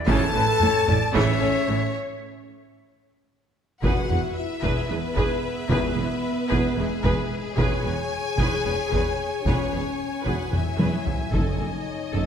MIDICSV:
0, 0, Header, 1, 10, 480
1, 0, Start_track
1, 0, Tempo, 536193
1, 67, Time_signature, 7, 3, 24, 8
1, 10975, End_track
2, 0, Start_track
2, 0, Title_t, "Violin section"
2, 0, Program_c, 0, 48
2, 63, Note_on_c, 0, 81, 121
2, 989, Note_off_c, 0, 81, 0
2, 1032, Note_on_c, 0, 73, 94
2, 1749, Note_off_c, 0, 73, 0
2, 3420, Note_on_c, 0, 78, 73
2, 3869, Note_off_c, 0, 78, 0
2, 3898, Note_on_c, 0, 76, 69
2, 4372, Note_off_c, 0, 76, 0
2, 4382, Note_on_c, 0, 71, 72
2, 5101, Note_off_c, 0, 71, 0
2, 5112, Note_on_c, 0, 71, 79
2, 6049, Note_off_c, 0, 71, 0
2, 6078, Note_on_c, 0, 68, 73
2, 6778, Note_off_c, 0, 68, 0
2, 6786, Note_on_c, 0, 80, 92
2, 8458, Note_on_c, 0, 73, 59
2, 8467, Note_off_c, 0, 80, 0
2, 9168, Note_off_c, 0, 73, 0
2, 9194, Note_on_c, 0, 78, 50
2, 9426, Note_off_c, 0, 78, 0
2, 9426, Note_on_c, 0, 76, 50
2, 10132, Note_off_c, 0, 76, 0
2, 10139, Note_on_c, 0, 75, 60
2, 10975, Note_off_c, 0, 75, 0
2, 10975, End_track
3, 0, Start_track
3, 0, Title_t, "Flute"
3, 0, Program_c, 1, 73
3, 74, Note_on_c, 1, 73, 91
3, 310, Note_off_c, 1, 73, 0
3, 319, Note_on_c, 1, 71, 76
3, 548, Note_off_c, 1, 71, 0
3, 560, Note_on_c, 1, 73, 85
3, 786, Note_on_c, 1, 74, 79
3, 799, Note_off_c, 1, 73, 0
3, 1039, Note_on_c, 1, 76, 86
3, 1052, Note_off_c, 1, 74, 0
3, 1752, Note_off_c, 1, 76, 0
3, 10975, End_track
4, 0, Start_track
4, 0, Title_t, "Violin section"
4, 0, Program_c, 2, 48
4, 73, Note_on_c, 2, 81, 116
4, 994, Note_off_c, 2, 81, 0
4, 1025, Note_on_c, 2, 73, 87
4, 1731, Note_off_c, 2, 73, 0
4, 3437, Note_on_c, 2, 71, 59
4, 3439, Note_on_c, 2, 76, 57
4, 6756, Note_off_c, 2, 71, 0
4, 6757, Note_off_c, 2, 76, 0
4, 6774, Note_on_c, 2, 73, 66
4, 6775, Note_on_c, 2, 80, 62
4, 9926, Note_off_c, 2, 73, 0
4, 10139, Note_on_c, 2, 73, 48
4, 10975, Note_off_c, 2, 73, 0
4, 10975, Note_off_c, 2, 80, 0
4, 10975, End_track
5, 0, Start_track
5, 0, Title_t, "Viola section"
5, 0, Program_c, 3, 48
5, 71, Note_on_c, 3, 52, 90
5, 72, Note_on_c, 3, 49, 95
5, 293, Note_off_c, 3, 49, 0
5, 293, Note_off_c, 3, 52, 0
5, 310, Note_on_c, 3, 57, 65
5, 310, Note_on_c, 3, 61, 73
5, 382, Note_off_c, 3, 57, 0
5, 382, Note_off_c, 3, 61, 0
5, 547, Note_on_c, 3, 52, 59
5, 549, Note_on_c, 3, 57, 66
5, 618, Note_off_c, 3, 52, 0
5, 620, Note_off_c, 3, 57, 0
5, 775, Note_on_c, 3, 61, 64
5, 780, Note_on_c, 3, 57, 62
5, 846, Note_off_c, 3, 61, 0
5, 852, Note_off_c, 3, 57, 0
5, 1023, Note_on_c, 3, 52, 92
5, 1028, Note_on_c, 3, 49, 83
5, 1248, Note_off_c, 3, 52, 0
5, 1251, Note_off_c, 3, 49, 0
5, 1264, Note_on_c, 3, 57, 61
5, 1270, Note_on_c, 3, 61, 69
5, 1336, Note_off_c, 3, 57, 0
5, 1342, Note_off_c, 3, 61, 0
5, 1509, Note_on_c, 3, 52, 58
5, 1515, Note_on_c, 3, 57, 70
5, 1580, Note_off_c, 3, 52, 0
5, 1586, Note_off_c, 3, 57, 0
5, 3429, Note_on_c, 3, 68, 66
5, 3430, Note_on_c, 3, 71, 65
5, 3651, Note_off_c, 3, 68, 0
5, 3651, Note_off_c, 3, 71, 0
5, 3667, Note_on_c, 3, 68, 46
5, 3671, Note_on_c, 3, 71, 39
5, 3738, Note_off_c, 3, 68, 0
5, 3743, Note_off_c, 3, 71, 0
5, 4148, Note_on_c, 3, 68, 61
5, 4150, Note_on_c, 3, 71, 70
5, 4370, Note_off_c, 3, 68, 0
5, 4371, Note_off_c, 3, 71, 0
5, 4384, Note_on_c, 3, 68, 56
5, 4385, Note_on_c, 3, 71, 51
5, 4456, Note_off_c, 3, 68, 0
5, 4457, Note_off_c, 3, 71, 0
5, 4616, Note_on_c, 3, 71, 65
5, 4626, Note_on_c, 3, 68, 71
5, 4844, Note_off_c, 3, 71, 0
5, 4849, Note_off_c, 3, 68, 0
5, 5098, Note_on_c, 3, 71, 75
5, 5104, Note_on_c, 3, 68, 72
5, 5325, Note_off_c, 3, 71, 0
5, 5328, Note_off_c, 3, 68, 0
5, 5344, Note_on_c, 3, 68, 49
5, 5344, Note_on_c, 3, 71, 52
5, 5416, Note_off_c, 3, 68, 0
5, 5416, Note_off_c, 3, 71, 0
5, 5816, Note_on_c, 3, 68, 80
5, 5816, Note_on_c, 3, 71, 73
5, 6043, Note_off_c, 3, 71, 0
5, 6044, Note_off_c, 3, 68, 0
5, 6063, Note_on_c, 3, 68, 52
5, 6064, Note_on_c, 3, 71, 58
5, 6135, Note_off_c, 3, 68, 0
5, 6135, Note_off_c, 3, 71, 0
5, 6300, Note_on_c, 3, 68, 65
5, 6305, Note_on_c, 3, 71, 75
5, 6526, Note_off_c, 3, 68, 0
5, 6529, Note_off_c, 3, 71, 0
5, 6783, Note_on_c, 3, 68, 80
5, 6783, Note_on_c, 3, 71, 72
5, 7007, Note_off_c, 3, 68, 0
5, 7008, Note_off_c, 3, 71, 0
5, 7024, Note_on_c, 3, 68, 51
5, 7024, Note_on_c, 3, 71, 46
5, 7096, Note_off_c, 3, 68, 0
5, 7096, Note_off_c, 3, 71, 0
5, 7506, Note_on_c, 3, 68, 66
5, 7509, Note_on_c, 3, 71, 73
5, 7729, Note_off_c, 3, 68, 0
5, 7731, Note_off_c, 3, 71, 0
5, 7741, Note_on_c, 3, 71, 53
5, 7746, Note_on_c, 3, 68, 50
5, 7812, Note_off_c, 3, 71, 0
5, 7817, Note_off_c, 3, 68, 0
5, 7975, Note_on_c, 3, 68, 59
5, 7976, Note_on_c, 3, 71, 55
5, 8203, Note_off_c, 3, 68, 0
5, 8204, Note_off_c, 3, 71, 0
5, 8472, Note_on_c, 3, 68, 60
5, 8472, Note_on_c, 3, 71, 57
5, 8693, Note_off_c, 3, 68, 0
5, 8693, Note_off_c, 3, 71, 0
5, 8707, Note_on_c, 3, 68, 37
5, 8710, Note_on_c, 3, 71, 36
5, 8778, Note_off_c, 3, 68, 0
5, 8782, Note_off_c, 3, 71, 0
5, 9172, Note_on_c, 3, 71, 55
5, 9176, Note_on_c, 3, 68, 55
5, 9402, Note_off_c, 3, 68, 0
5, 9402, Note_off_c, 3, 71, 0
5, 9412, Note_on_c, 3, 68, 36
5, 9413, Note_on_c, 3, 71, 40
5, 9484, Note_off_c, 3, 68, 0
5, 9485, Note_off_c, 3, 71, 0
5, 9647, Note_on_c, 3, 68, 48
5, 9648, Note_on_c, 3, 71, 52
5, 9880, Note_off_c, 3, 68, 0
5, 9880, Note_off_c, 3, 71, 0
5, 10133, Note_on_c, 3, 69, 50
5, 10141, Note_off_c, 3, 69, 0
5, 10141, Note_on_c, 3, 69, 59
5, 10367, Note_off_c, 3, 69, 0
5, 10381, Note_on_c, 3, 69, 35
5, 10382, Note_off_c, 3, 69, 0
5, 10382, Note_on_c, 3, 69, 34
5, 10454, Note_off_c, 3, 69, 0
5, 10859, Note_on_c, 3, 69, 57
5, 10861, Note_off_c, 3, 69, 0
5, 10861, Note_on_c, 3, 69, 55
5, 10975, Note_off_c, 3, 69, 0
5, 10975, End_track
6, 0, Start_track
6, 0, Title_t, "French horn section"
6, 0, Program_c, 4, 60
6, 53, Note_on_c, 4, 69, 127
6, 984, Note_off_c, 4, 69, 0
6, 1036, Note_on_c, 4, 61, 107
6, 1737, Note_off_c, 4, 61, 0
6, 3448, Note_on_c, 4, 66, 87
6, 3884, Note_off_c, 4, 66, 0
6, 3926, Note_on_c, 4, 64, 86
6, 4391, Note_on_c, 4, 59, 82
6, 4396, Note_off_c, 4, 64, 0
6, 5078, Note_off_c, 4, 59, 0
6, 5088, Note_on_c, 4, 59, 94
6, 6038, Note_off_c, 4, 59, 0
6, 6066, Note_on_c, 4, 56, 83
6, 6781, Note_on_c, 4, 68, 108
6, 6786, Note_off_c, 4, 56, 0
6, 8430, Note_off_c, 4, 68, 0
6, 8454, Note_on_c, 4, 61, 76
6, 9180, Note_off_c, 4, 61, 0
6, 9181, Note_on_c, 4, 66, 65
6, 9407, Note_on_c, 4, 64, 57
6, 9424, Note_off_c, 4, 66, 0
6, 10137, Note_off_c, 4, 64, 0
6, 10143, Note_on_c, 4, 63, 77
6, 10975, Note_off_c, 4, 63, 0
6, 10975, End_track
7, 0, Start_track
7, 0, Title_t, "Timpani"
7, 0, Program_c, 5, 47
7, 10132, Note_on_c, 5, 42, 65
7, 10824, Note_off_c, 5, 42, 0
7, 10975, End_track
8, 0, Start_track
8, 0, Title_t, "Cello section"
8, 0, Program_c, 6, 48
8, 54, Note_on_c, 6, 45, 100
8, 125, Note_off_c, 6, 45, 0
8, 306, Note_on_c, 6, 45, 69
8, 377, Note_off_c, 6, 45, 0
8, 547, Note_on_c, 6, 45, 73
8, 619, Note_off_c, 6, 45, 0
8, 787, Note_on_c, 6, 45, 67
8, 858, Note_off_c, 6, 45, 0
8, 1023, Note_on_c, 6, 45, 96
8, 1095, Note_off_c, 6, 45, 0
8, 1275, Note_on_c, 6, 45, 58
8, 1346, Note_off_c, 6, 45, 0
8, 1511, Note_on_c, 6, 45, 60
8, 1582, Note_off_c, 6, 45, 0
8, 3442, Note_on_c, 6, 40, 62
8, 3514, Note_off_c, 6, 40, 0
8, 3675, Note_on_c, 6, 40, 50
8, 3747, Note_off_c, 6, 40, 0
8, 4156, Note_on_c, 6, 40, 69
8, 4227, Note_off_c, 6, 40, 0
8, 4389, Note_on_c, 6, 40, 48
8, 4460, Note_off_c, 6, 40, 0
8, 4626, Note_on_c, 6, 40, 74
8, 4698, Note_off_c, 6, 40, 0
8, 5107, Note_on_c, 6, 40, 68
8, 5179, Note_off_c, 6, 40, 0
8, 5342, Note_on_c, 6, 40, 55
8, 5413, Note_off_c, 6, 40, 0
8, 5830, Note_on_c, 6, 40, 72
8, 5902, Note_off_c, 6, 40, 0
8, 6078, Note_on_c, 6, 40, 56
8, 6150, Note_off_c, 6, 40, 0
8, 6313, Note_on_c, 6, 40, 78
8, 6385, Note_off_c, 6, 40, 0
8, 6782, Note_on_c, 6, 40, 69
8, 6854, Note_off_c, 6, 40, 0
8, 7034, Note_on_c, 6, 40, 53
8, 7106, Note_off_c, 6, 40, 0
8, 7516, Note_on_c, 6, 40, 64
8, 7588, Note_off_c, 6, 40, 0
8, 7756, Note_on_c, 6, 40, 48
8, 7828, Note_off_c, 6, 40, 0
8, 8003, Note_on_c, 6, 40, 62
8, 8074, Note_off_c, 6, 40, 0
8, 8476, Note_on_c, 6, 40, 53
8, 8547, Note_off_c, 6, 40, 0
8, 8721, Note_on_c, 6, 40, 39
8, 8793, Note_off_c, 6, 40, 0
8, 9194, Note_on_c, 6, 40, 52
8, 9266, Note_off_c, 6, 40, 0
8, 9434, Note_on_c, 6, 40, 39
8, 9505, Note_off_c, 6, 40, 0
8, 9664, Note_on_c, 6, 40, 53
8, 9735, Note_off_c, 6, 40, 0
8, 10156, Note_on_c, 6, 42, 55
8, 10228, Note_off_c, 6, 42, 0
8, 10391, Note_on_c, 6, 42, 43
8, 10463, Note_off_c, 6, 42, 0
8, 10868, Note_on_c, 6, 42, 56
8, 10940, Note_off_c, 6, 42, 0
8, 10975, End_track
9, 0, Start_track
9, 0, Title_t, "Double bass section"
9, 0, Program_c, 7, 48
9, 64, Note_on_c, 7, 33, 96
9, 135, Note_off_c, 7, 33, 0
9, 309, Note_on_c, 7, 33, 67
9, 380, Note_off_c, 7, 33, 0
9, 551, Note_on_c, 7, 33, 69
9, 623, Note_off_c, 7, 33, 0
9, 793, Note_on_c, 7, 33, 64
9, 864, Note_off_c, 7, 33, 0
9, 1034, Note_on_c, 7, 33, 97
9, 1106, Note_off_c, 7, 33, 0
9, 1271, Note_on_c, 7, 33, 60
9, 1343, Note_off_c, 7, 33, 0
9, 1509, Note_on_c, 7, 33, 59
9, 1581, Note_off_c, 7, 33, 0
9, 3434, Note_on_c, 7, 28, 63
9, 3506, Note_off_c, 7, 28, 0
9, 3670, Note_on_c, 7, 28, 49
9, 3742, Note_off_c, 7, 28, 0
9, 4154, Note_on_c, 7, 28, 69
9, 4225, Note_off_c, 7, 28, 0
9, 4398, Note_on_c, 7, 28, 51
9, 4470, Note_off_c, 7, 28, 0
9, 4634, Note_on_c, 7, 28, 70
9, 4705, Note_off_c, 7, 28, 0
9, 5103, Note_on_c, 7, 28, 70
9, 5175, Note_off_c, 7, 28, 0
9, 5338, Note_on_c, 7, 28, 54
9, 5410, Note_off_c, 7, 28, 0
9, 5831, Note_on_c, 7, 28, 77
9, 5903, Note_off_c, 7, 28, 0
9, 6065, Note_on_c, 7, 28, 57
9, 6137, Note_off_c, 7, 28, 0
9, 6303, Note_on_c, 7, 28, 76
9, 6374, Note_off_c, 7, 28, 0
9, 6781, Note_on_c, 7, 28, 73
9, 6852, Note_off_c, 7, 28, 0
9, 7025, Note_on_c, 7, 28, 50
9, 7097, Note_off_c, 7, 28, 0
9, 7502, Note_on_c, 7, 28, 67
9, 7574, Note_off_c, 7, 28, 0
9, 7750, Note_on_c, 7, 28, 48
9, 7821, Note_off_c, 7, 28, 0
9, 7986, Note_on_c, 7, 28, 59
9, 8058, Note_off_c, 7, 28, 0
9, 8467, Note_on_c, 7, 28, 56
9, 8539, Note_off_c, 7, 28, 0
9, 8706, Note_on_c, 7, 28, 42
9, 8777, Note_off_c, 7, 28, 0
9, 9184, Note_on_c, 7, 28, 53
9, 9256, Note_off_c, 7, 28, 0
9, 9421, Note_on_c, 7, 28, 39
9, 9492, Note_off_c, 7, 28, 0
9, 9663, Note_on_c, 7, 28, 50
9, 9734, Note_off_c, 7, 28, 0
9, 10134, Note_on_c, 7, 30, 54
9, 10206, Note_off_c, 7, 30, 0
9, 10373, Note_on_c, 7, 30, 40
9, 10445, Note_off_c, 7, 30, 0
9, 10863, Note_on_c, 7, 30, 53
9, 10935, Note_off_c, 7, 30, 0
9, 10975, End_track
10, 0, Start_track
10, 0, Title_t, "Taiko and cinematic ensemble drums"
10, 66, Note_on_c, 9, 41, 101
10, 156, Note_off_c, 9, 41, 0
10, 544, Note_on_c, 9, 45, 65
10, 634, Note_off_c, 9, 45, 0
10, 791, Note_on_c, 9, 45, 56
10, 880, Note_off_c, 9, 45, 0
10, 1036, Note_on_c, 9, 41, 81
10, 1125, Note_off_c, 9, 41, 0
10, 3433, Note_on_c, 9, 41, 90
10, 3522, Note_off_c, 9, 41, 0
10, 3679, Note_on_c, 9, 45, 47
10, 3768, Note_off_c, 9, 45, 0
10, 4149, Note_on_c, 9, 41, 75
10, 4238, Note_off_c, 9, 41, 0
10, 4625, Note_on_c, 9, 41, 73
10, 4715, Note_off_c, 9, 41, 0
10, 5104, Note_on_c, 9, 41, 92
10, 5194, Note_off_c, 9, 41, 0
10, 5830, Note_on_c, 9, 41, 73
10, 5919, Note_off_c, 9, 41, 0
10, 6303, Note_on_c, 9, 41, 74
10, 6392, Note_off_c, 9, 41, 0
10, 6784, Note_on_c, 9, 41, 87
10, 6873, Note_off_c, 9, 41, 0
10, 7505, Note_on_c, 9, 41, 74
10, 7595, Note_off_c, 9, 41, 0
10, 7990, Note_on_c, 9, 41, 71
10, 8079, Note_off_c, 9, 41, 0
10, 8468, Note_on_c, 9, 41, 86
10, 8557, Note_off_c, 9, 41, 0
10, 9186, Note_on_c, 9, 41, 68
10, 9275, Note_off_c, 9, 41, 0
10, 9427, Note_on_c, 9, 45, 66
10, 9517, Note_off_c, 9, 45, 0
10, 9663, Note_on_c, 9, 48, 71
10, 9753, Note_off_c, 9, 48, 0
10, 9908, Note_on_c, 9, 43, 83
10, 9998, Note_off_c, 9, 43, 0
10, 10149, Note_on_c, 9, 41, 80
10, 10238, Note_off_c, 9, 41, 0
10, 10872, Note_on_c, 9, 41, 68
10, 10962, Note_off_c, 9, 41, 0
10, 10975, End_track
0, 0, End_of_file